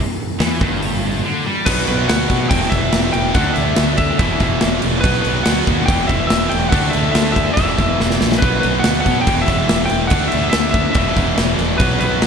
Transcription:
0.40 fingered electric bass E2, distorted electric guitar E3, snare, open hi-hat
0.61 fingered electric bass G1, distorted electric guitar G2, kick
0.82 open hi-hat
1.26 distorted electric guitar D3
1.46 distorted electric guitar G3
1.66 fingered electric bass B1, distorted electric guitar B2 F#3 B3, lead electric guitar B4, kick, crash
1.87 fingered electric bass B1, lead electric guitar B4, crash
2.08 fingered electric bass D2, lead electric guitar F#5, snare, crash
2.30 fingered electric bass B2, kick, crash
2.49 fingered electric bass E1, distorted electric guitar E2 B2 E3, lead electric guitar G5, kick, crash
2.70 fingered electric bass E1, lead electric guitar E5, kick, snare, crash
2.92 fingered electric bass E1, snare, crash
3.13 fingered electric bass E1, lead electric guitar G5, crash
3.34 fingered electric bass D2, distorted electric guitar D3 A3 D4, lead electric guitar F#5, kick, crash
3.54 fingered electric bass D2, lead electric guitar E5, crash
3.76 fingered electric bass D2, snare, crash
3.97 lead electric guitar E5, kick, crash
4.18 fingered electric bass E1, distorted electric guitar E2 B2 E3, lead electric guitar E5, kick, crash
4.40 fingered electric bass E1, kick, snare, crash
4.61 fingered electric bass E1, snare, crash
4.82 fingered electric bass E1, crash
5.01 fingered electric bass B1, distorted electric guitar B2, lead electric guitar B4, kick, crash
5.05 distorted electric guitar F#3 B3
5.22 fingered electric bass B1, lead electric guitar B4, crash
5.43 fingered electric bass D2, lead electric guitar F#5, snare, crash
5.67 fingered electric bass D#2, kick, crash
5.86 fingered electric bass E1, distorted electric guitar E2 B2, lead electric guitar G5, kick, crash
5.90 distorted electric guitar E3
6.08 fingered electric bass E1, lead electric guitar E5, kick, crash
6.27 lead electric guitar E5, snare, crash
6.31 fingered electric bass E1
6.49 fingered electric bass E1, lead electric guitar G5, crash
6.69 fingered electric bass D2, distorted electric guitar D3 A3, lead electric guitar F#5, kick, crash
6.74 distorted electric guitar D4
6.90 lead electric guitar E5, crash
6.95 fingered electric bass D2
7.11 fingered electric bass D2, lead electric guitar E5, snare, crash
7.32 lead electric guitar E5
7.36 kick, crash
7.54 fingered electric bass E1, distorted electric guitar E2 B2, lead electric guitar E5, kick, crash
7.59 distorted electric guitar E3
7.78 fingered electric bass E1, kick, snare, crash
8.00 fingered electric bass E1, snare
8.11 snare
8.21 fingered electric bass A#1, snare
8.32 snare
8.39 distorted electric guitar B2, lead electric guitar B4, kick, crash
8.43 fingered electric bass B1, distorted electric guitar F#3 B3
8.60 lead electric guitar B4, crash
8.64 fingered electric bass B1
8.80 lead electric guitar F#5
8.84 fingered electric bass D2, snare, crash
9.00 lead electric guitar F#5
9.06 fingered electric bass B2, kick, crash
9.21 lead electric guitar G5
9.27 fingered electric bass E1, distorted electric guitar E2 B2 E3, kick, crash
9.42 lead electric guitar E5
9.48 fingered electric bass E1, kick, snare, crash
9.69 fingered electric bass E1, snare, crash
9.86 lead electric guitar G5
9.90 fingered electric bass E1, crash
10.07 fingered electric bass D2, distorted electric guitar D3, lead electric guitar F#5, kick, crash
10.12 distorted electric guitar A3 D4
10.28 lead electric guitar E5, crash
10.33 fingered electric bass D2
10.50 lead electric guitar E5, snare, crash
10.55 fingered electric bass D2
10.71 lead electric guitar E5, kick, crash
10.92 fingered electric bass E1, distorted electric guitar E2, lead electric guitar E5, kick, crash
10.97 distorted electric guitar B2 E3
11.16 fingered electric bass E1, kick, snare, crash
11.37 fingered electric bass E1, snare, crash
11.59 fingered electric bass E1, crash
11.78 fingered electric bass B1, distorted electric guitar B2 F#3, lead electric guitar B4, kick, crash
11.83 distorted electric guitar B3
12.00 fingered electric bass B1, lead electric guitar B4, crash
12.22 fingered electric bass D2, snare, crash

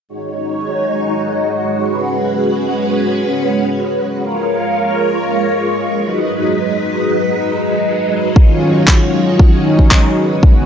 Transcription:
0.08 string machine G#3 D#4 F#4 C#5
1.89 string machine C#4 B4
4.22 string machine G#3 F4 A#4 C#5
6.03 string machine F#3 D#4 B4
8.35 analog synth pad D#3 F#3 C#4 F4, string machine C#5, kick
8.87 kick, clap
9.39 kick
9.52 analog synth pad D#3 F#3 C#4 D#4
9.79 kick
9.91 kick, clap
10.17 string machine C#4 B4
10.42 analog synth pad C#3 G#3 B3 F#4, kick

